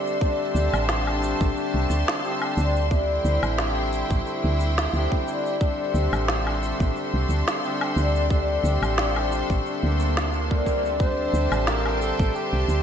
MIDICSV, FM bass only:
0, 0, Header, 1, 2, 480
1, 0, Start_track
1, 0, Tempo, 674157
1, 152, Time_signature, 4, 2, 24, 8
1, 9134, End_track
2, 0, Start_track
2, 0, Title_t, "FM bass"
2, 0, Program_c, 0, 39
2, 390, Note_on_c, 0, 38, 93
2, 493, Note_off_c, 0, 38, 0
2, 523, Note_on_c, 0, 33, 83
2, 957, Note_off_c, 0, 33, 0
2, 1002, Note_on_c, 0, 33, 89
2, 1088, Note_off_c, 0, 33, 0
2, 1241, Note_on_c, 0, 36, 82
2, 1327, Note_off_c, 0, 36, 0
2, 1352, Note_on_c, 0, 38, 82
2, 1454, Note_off_c, 0, 38, 0
2, 1832, Note_on_c, 0, 38, 106
2, 2274, Note_off_c, 0, 38, 0
2, 2311, Note_on_c, 0, 38, 102
2, 2414, Note_off_c, 0, 38, 0
2, 2442, Note_on_c, 0, 33, 79
2, 2877, Note_off_c, 0, 33, 0
2, 2924, Note_on_c, 0, 33, 89
2, 3009, Note_off_c, 0, 33, 0
2, 3163, Note_on_c, 0, 38, 101
2, 3474, Note_off_c, 0, 38, 0
2, 3513, Note_on_c, 0, 38, 88
2, 3615, Note_off_c, 0, 38, 0
2, 4232, Note_on_c, 0, 38, 98
2, 4334, Note_off_c, 0, 38, 0
2, 4362, Note_on_c, 0, 33, 86
2, 4796, Note_off_c, 0, 33, 0
2, 4843, Note_on_c, 0, 33, 88
2, 4928, Note_off_c, 0, 33, 0
2, 5082, Note_on_c, 0, 36, 86
2, 5168, Note_off_c, 0, 36, 0
2, 5191, Note_on_c, 0, 38, 81
2, 5294, Note_off_c, 0, 38, 0
2, 5671, Note_on_c, 0, 38, 106
2, 6113, Note_off_c, 0, 38, 0
2, 6149, Note_on_c, 0, 38, 99
2, 6253, Note_off_c, 0, 38, 0
2, 6281, Note_on_c, 0, 33, 84
2, 6716, Note_off_c, 0, 33, 0
2, 6764, Note_on_c, 0, 33, 86
2, 6849, Note_off_c, 0, 33, 0
2, 7000, Note_on_c, 0, 38, 107
2, 7592, Note_on_c, 0, 36, 77
2, 7603, Note_off_c, 0, 38, 0
2, 7721, Note_on_c, 0, 38, 90
2, 7731, Note_off_c, 0, 36, 0
2, 8033, Note_off_c, 0, 38, 0
2, 8070, Note_on_c, 0, 38, 89
2, 8173, Note_off_c, 0, 38, 0
2, 8200, Note_on_c, 0, 33, 79
2, 8636, Note_off_c, 0, 33, 0
2, 8682, Note_on_c, 0, 33, 90
2, 8768, Note_off_c, 0, 33, 0
2, 8920, Note_on_c, 0, 36, 82
2, 9007, Note_off_c, 0, 36, 0
2, 9030, Note_on_c, 0, 38, 82
2, 9133, Note_off_c, 0, 38, 0
2, 9134, End_track
0, 0, End_of_file